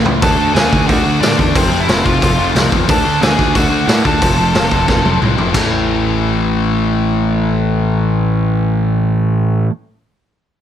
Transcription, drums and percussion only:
0.06 floor tom
0.22 kick, open hi-hat
0.56 snare, open hi-hat
0.73 kick
0.89 kick, open hi-hat
1.23 snare, open hi-hat
1.39 kick
1.55 kick, open hi-hat
1.89 snare, open hi-hat
2.06 kick
2.22 kick, open hi-hat
2.56 snare, open hi-hat
2.72 kick
2.89 kick, open hi-hat
3.22 snare, open hi-hat
3.39 kick
3.55 kick, open hi-hat
3.88 snare, open hi-hat
4.05 kick
4.22 kick, open hi-hat
4.55 snare, open hi-hat
4.71 kick
4.88 kick, snare
5.05 high tom
5.22 mid tom
5.38 floor tom
5.54 kick, crash

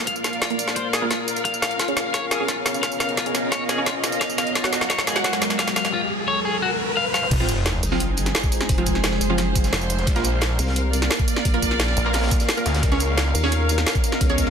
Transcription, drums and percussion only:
0.07 kick, closed hi-hat
0.16 tambourine
0.24 snare, closed hi-hat, tambourine
0.33 closed hi-hat
0.42 kick, snare, closed hi-hat
0.50 closed hi-hat
0.59 closed hi-hat, tambourine
0.68 snare
0.76 kick, closed hi-hat
0.93 snare, closed hi-hat, tambourine
1.11 kick, snare, closed hi-hat
1.28 closed hi-hat, tambourine
1.36 closed hi-hat, tambourine
1.45 kick, closed hi-hat
1.54 tambourine
1.62 snare, closed hi-hat, tambourine
1.71 closed hi-hat
1.79 kick, snare, closed hi-hat
1.88 closed hi-hat
1.97 snare, closed hi-hat, tambourine
2.14 kick, snare, closed hi-hat
2.31 snare, closed hi-hat, tambourine
2.48 kick, snare, closed hi-hat
2.66 snare, closed hi-hat, tambourine
2.74 closed hi-hat, tambourine
2.83 kick, snare, closed hi-hat
2.92 tambourine
3.00 snare, closed hi-hat, tambourine
3.09 closed hi-hat
3.17 kick, snare, closed hi-hat
3.26 closed hi-hat
3.35 snare, closed hi-hat, tambourine
3.52 kick, snare, closed hi-hat
3.69 snare, closed hi-hat, tambourine
3.86 kick, snare, closed hi-hat
4.04 snare, closed hi-hat, tambourine
4.12 closed hi-hat, tambourine
4.21 kick, snare, closed hi-hat
4.30 tambourine
4.38 snare, closed hi-hat, tambourine
4.47 closed hi-hat
4.55 kick, snare, closed hi-hat
4.64 snare, closed hi-hat
4.73 snare, closed hi-hat, tambourine
4.81 snare
4.90 kick, snare, closed hi-hat
4.99 snare
5.07 snare, closed hi-hat, tambourine
5.16 snare
5.24 kick, snare, closed hi-hat
5.33 snare
5.42 snare, closed hi-hat, tambourine
5.50 snare, closed hi-hat, tambourine
5.59 kick, snare, closed hi-hat
5.68 snare, tambourine
5.76 snare, closed hi-hat, tambourine
5.85 snare, closed hi-hat
7.14 snare
7.23 mid tom
7.31 kick, closed hi-hat, crash
7.40 snare, closed hi-hat
7.48 closed hi-hat, tambourine
7.66 snare, closed hi-hat
7.83 closed hi-hat, open hi-hat, tambourine
7.92 snare
8.00 closed hi-hat
8.17 closed hi-hat, tambourine
8.26 snare, closed hi-hat, tambourine
8.35 snare, closed hi-hat
8.43 kick, tambourine
8.52 closed hi-hat, tambourine
8.61 snare, closed hi-hat
8.69 kick, closed hi-hat
8.78 closed hi-hat
8.86 kick, closed hi-hat, tambourine
8.95 snare
9.03 snare, closed hi-hat
9.12 snare
9.21 closed hi-hat, tambourine
9.38 snare, closed hi-hat
9.55 kick, closed hi-hat, tambourine
9.64 snare, closed hi-hat, tambourine
9.73 snare, closed hi-hat
9.81 tambourine
9.90 closed hi-hat, tambourine
9.99 snare, closed hi-hat
10.07 kick, closed hi-hat
10.16 snare, closed hi-hat
10.24 closed hi-hat, tambourine
10.41 snare, closed hi-hat
10.59 closed hi-hat, open hi-hat, tambourine
10.67 snare
10.76 closed hi-hat
10.93 closed hi-hat, tambourine
11.02 snare, closed hi-hat, tambourine
11.10 snare, closed hi-hat
11.19 kick, tambourine
11.28 closed hi-hat, tambourine
11.36 snare, closed hi-hat
11.45 kick, closed hi-hat
11.54 closed hi-hat
11.62 kick, closed hi-hat, tambourine
11.71 snare
11.80 snare, closed hi-hat
11.88 snare
11.97 closed hi-hat, tambourine
12.13 snare, closed hi-hat
12.18 snare, closed hi-hat
12.23 snare, closed hi-hat
12.27 snare, closed hi-hat
12.31 kick, closed hi-hat, tambourine
12.40 snare, closed hi-hat, tambourine
12.48 snare, closed hi-hat
12.57 tambourine
12.66 snare, closed hi-hat, tambourine
12.74 snare, closed hi-hat
12.83 kick, closed hi-hat
12.92 snare, closed hi-hat
13.00 closed hi-hat, tambourine
13.17 snare, closed hi-hat
13.35 closed hi-hat, open hi-hat, tambourine
13.44 snare
13.52 closed hi-hat
13.69 closed hi-hat, tambourine
13.78 snare, closed hi-hat, tambourine
13.87 snare, closed hi-hat
13.95 kick, tambourine
14.04 closed hi-hat, tambourine
14.12 snare, closed hi-hat
14.21 kick, closed hi-hat
14.30 closed hi-hat
14.38 kick, closed hi-hat, tambourine
14.47 snare

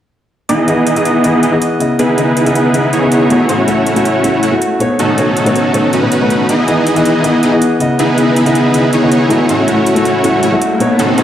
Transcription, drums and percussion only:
0.49 closed hi-hat
0.68 closed hi-hat
0.87 closed hi-hat
0.96 closed hi-hat
1.05 closed hi-hat
1.24 closed hi-hat
1.43 closed hi-hat
1.62 closed hi-hat
1.80 closed hi-hat
1.99 closed hi-hat
2.18 closed hi-hat
2.37 closed hi-hat
2.46 closed hi-hat
2.55 closed hi-hat
2.74 closed hi-hat
2.93 closed hi-hat
3.12 closed hi-hat
3.30 closed hi-hat
3.49 closed hi-hat
3.68 closed hi-hat
3.87 closed hi-hat
3.96 closed hi-hat
4.05 closed hi-hat
4.24 closed hi-hat
4.43 closed hi-hat
4.62 closed hi-hat
4.80 closed hi-hat
4.99 closed hi-hat
5.18 closed hi-hat
5.37 closed hi-hat
5.46 closed hi-hat
5.56 closed hi-hat
5.74 closed hi-hat
5.93 closed hi-hat
6.12 closed hi-hat
6.30 closed hi-hat
6.49 closed hi-hat
6.68 closed hi-hat
6.87 closed hi-hat
6.96 closed hi-hat
7.05 closed hi-hat
7.24 closed hi-hat
7.43 closed hi-hat
7.62 closed hi-hat
7.80 closed hi-hat
7.99 closed hi-hat
8.18 closed hi-hat
8.36 closed hi-hat
8.46 closed hi-hat
8.55 closed hi-hat
8.74 closed hi-hat
8.93 closed hi-hat
9.12 closed hi-hat
9.30 closed hi-hat
9.49 closed hi-hat
9.68 closed hi-hat
9.87 closed hi-hat
9.96 closed hi-hat
10.05 closed hi-hat
10.24 closed hi-hat
10.43 closed hi-hat
10.62 closed hi-hat
10.80 closed hi-hat
10.99 closed hi-hat
11.18 closed hi-hat

